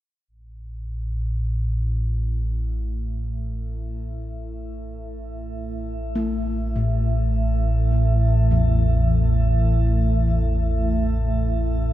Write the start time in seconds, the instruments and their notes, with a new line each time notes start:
0.28 synth drone A1 A2, ambient pad A3
0.80 ambient pad E4
2.64 ambient pad E5
6.16 kettle gongs A3
6.76 kettle gongs A2
8.51 kettle gongs E2